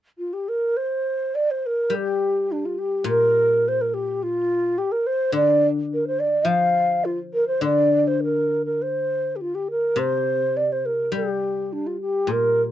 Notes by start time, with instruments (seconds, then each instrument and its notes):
0.18 xiao F4
0.33 xiao G4
0.48 xiao A#4
0.77 xiao C5
1.35 xiao D5
1.51 xiao C5
1.66 xiao A#4
1.90 guzheng G3
1.95 xiao G4
2.52 xiao D4
2.65 xiao F4
2.79 xiao G4
3.04 guzheng A#2, xiao A#4
3.68 xiao C5
3.81 xiao A#4
3.94 xiao G4
4.23 xiao F4
4.78 xiao G4
4.92 xiao A#4
5.07 xiao C5
5.32 guzheng D3, xiao D5
5.94 xiao A#4
6.07 xiao C5
6.20 xiao D5
6.45 guzheng F3, xiao F5
7.05 xiao F4
7.34 xiao A#4
7.48 xiao C5
7.61 guzheng D3, xiao D5
8.08 xiao C5
8.23 xiao A#4
8.65 xiao A#4
8.82 xiao C5
9.36 xiao G4
9.41 xiao F4
9.55 xiao G4
9.71 xiao A#4
9.96 guzheng C3, xiao C5
10.57 xiao D5
10.72 xiao C5
10.86 xiao A#4
11.12 guzheng G3, xiao G4
11.73 xiao D4
11.87 xiao F4
12.01 xiao G4
12.27 guzheng A#2
12.31 xiao A#4